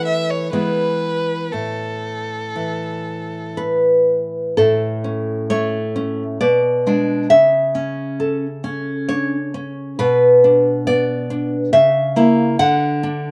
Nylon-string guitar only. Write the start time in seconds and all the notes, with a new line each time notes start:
Already playing: E3 A3 C#4
0.53 E3 G#3 B3
1.53 A2
2.56 E3
3.57 B4
4.57 A2 A4
5.04 C#4
5.50 A3 C#5
5.96 C#4
6.41 B2 D5
6.87 G#3 D4
7.30 C#3 E5
7.75 C#4
8.20 A4
8.64 C#4
9.09 D4 C#5
9.54 C#4
9.99 B2 B4
10.44 D4
10.87 B3 D5
11.30 D4
11.73 C#3 E5
12.16 A#3 E4
12.59 D3 F#5
13.03 D4